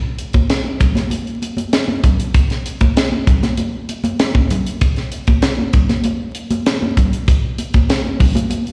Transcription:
0.19 closed hi-hat medium
0.33 kick medium
0.33 closed hi-hat soft
0.33 high conga medium
0.50 snare loud
0.50 closed hi-hat medium
0.50 muted conga soft
0.64 high conga medium
0.80 kick loud
0.80 closed hi-hat medium
0.80 low conga medium
0.95 snare soft
0.95 closed hi-hat soft
0.95 high conga medium
1.10 closed hi-hat medium
1.10 muted conga soft
1.10 high conga medium
1.27 closed hi-hat soft
1.42 closed hi-hat medium
1.42 muted conga soft
1.57 closed hi-hat medium
1.57 high conga medium
1.73 snare loud
1.73 closed hi-hat loud
1.73 muted conga soft
1.88 high conga medium
2.04 kick medium
2.04 closed hi-hat medium
2.04 muted conga soft
2.04 low conga loud
2.20 closed hi-hat medium
2.34 kick loud
2.34 closed hi-hat medium
2.34 muted conga soft
2.50 snare soft
2.50 closed hi-hat soft
2.66 closed hi-hat medium
2.81 kick medium
2.81 closed hi-hat soft
2.81 high conga medium
2.96 snare loud
2.96 closed hi-hat loud
2.96 muted conga soft
3.12 high conga medium
3.27 kick loud
3.27 closed hi-hat medium
3.27 low conga medium
3.43 snare soft
3.43 closed hi-hat soft
3.43 high conga medium
3.57 closed hi-hat medium
3.57 muted conga soft
3.57 high conga medium
3.89 closed hi-hat medium
3.89 muted conga soft
4.04 closed hi-hat medium
4.04 high conga medium
4.20 snare loud
4.20 closed hi-hat loud
4.20 muted conga soft
4.35 kick medium
4.35 high conga medium
4.50 closed hi-hat medium
4.50 muted conga soft
4.50 low conga loud
4.66 closed hi-hat medium
4.81 kick loud
4.81 closed hi-hat medium
4.81 muted conga soft
4.96 snare soft
4.96 closed hi-hat soft
5.12 closed hi-hat medium
5.27 kick medium
5.27 closed hi-hat soft
5.27 high conga medium
5.42 snare loud
5.42 closed hi-hat loud
5.58 high conga medium
5.73 kick loud
5.73 closed hi-hat medium
5.73 low conga medium
5.89 snare soft
5.89 closed hi-hat medium
5.89 high conga medium
6.04 closed hi-hat medium
6.04 muted conga soft
6.04 high conga medium
6.35 closed hi-hat medium
6.50 closed hi-hat medium
6.50 high conga medium
6.66 snare loud
6.66 closed hi-hat loud
6.66 muted conga soft
6.82 high conga medium
6.97 kick medium
6.97 closed hi-hat medium
6.97 muted conga soft
6.97 low conga medium
7.13 closed hi-hat medium
7.28 kick loud
7.28 closed hi-hat medium
7.28 muted conga soft
7.58 closed hi-hat medium
7.58 muted conga soft
7.74 kick medium
7.74 closed hi-hat soft
7.74 high conga medium
7.89 snare loud
7.89 closed hi-hat medium
7.89 muted conga soft
8.04 high conga medium
8.20 kick loud
8.20 open hi-hat medium
8.20 low conga medium
8.35 closed hi-hat medium
8.35 high conga medium
8.50 closed hi-hat medium
8.50 high conga medium
8.67 closed hi-hat soft

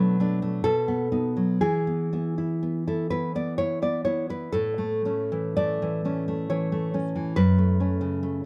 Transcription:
0.00 0.60 B2 medium
0.00 0.64 F#3 medium
0.00 0.19 A3 medium
0.00 0.19 D4 medium
0.00 0.60 B4 loud
0.20 0.41 A3 medium
0.20 0.61 D4 medium
0.42 0.65 A3 medium
0.64 1.59 B2 medium
0.64 1.57 A4 loud
0.88 1.11 B3 medium
1.12 1.57 B3 medium
1.12 1.57 D#4 medium
1.37 1.61 F#3 soft
1.61 4.51 E3 medium
1.61 2.82 G#4 medium
1.87 2.12 B3 soft
2.13 2.61 B3 soft
2.13 2.37 E4 medium
2.38 2.86 E4 soft
2.63 3.10 B3 soft
2.87 3.10 E4 soft
2.87 3.11 A4 medium
3.10 3.34 B3 soft
3.10 3.58 E4 soft
3.10 3.34 B4 medium
3.35 3.81 B3 soft
3.35 3.58 D5 medium
3.58 4.05 E4 medium
3.58 3.82 C#5 medium
3.82 4.04 B3 soft
3.82 4.04 D5 medium
4.05 4.50 B3 soft
4.05 4.28 E4 soft
4.05 4.30 C#5 medium
4.30 4.54 E4 soft
4.30 4.54 B4 medium
4.52 7.31 A2 medium
4.52 5.52 A4 medium
4.78 5.04 A3 medium
5.05 5.55 A3 soft
5.05 6.04 C#4 soft
5.32 5.81 E3 medium
5.57 6.04 A3 medium
5.57 6.46 D5 medium
5.82 6.49 E3 medium
6.05 6.27 A3 soft
6.05 6.93 C#4 medium
6.28 6.71 A3 medium
6.50 7.14 E3 medium
6.50 7.32 C#5 medium
6.72 6.93 A3 medium
6.94 7.32 A3 soft
6.94 7.33 C#4 medium
7.16 7.37 E3 medium
7.36 8.44 F#2 medium
7.36 8.39 B4 loud
7.58 7.79 A3 soft
7.80 8.22 A3 soft
7.80 8.45 C#4 soft
8.01 8.43 C#3 medium
8.23 8.45 A3 medium

